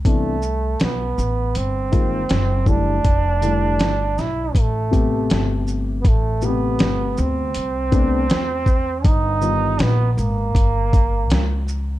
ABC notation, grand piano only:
X:1
M:4/4
L:1/8
Q:"Swing 16ths" 1/4=80
K:Am
V:1 name="Grand piano"
[C,E,B,D] z4 [^D,^G,_B,F] z [=D,=G,A,E] | z [D,G,A,E] z3 [C,A,B,G]3 | z [B,,C,A,B,G]3 z [C,A,B,D] z2 | z [^D,G,B,F] z6 |]